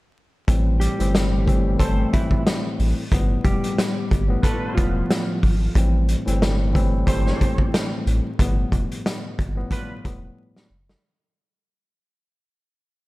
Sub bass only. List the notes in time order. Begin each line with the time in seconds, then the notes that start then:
0.48 A1
1.00 G1
1.79 G1
2.79 A1
3.12 G1
3.44 F1
4.11 G1
4.78 E1
5.43 G#1
5.75 A1
6.27 G1
7.07 G1
8.06 A1
8.39 G1
8.72 F1
9.39 G1
10.05 E1
10.70 F#1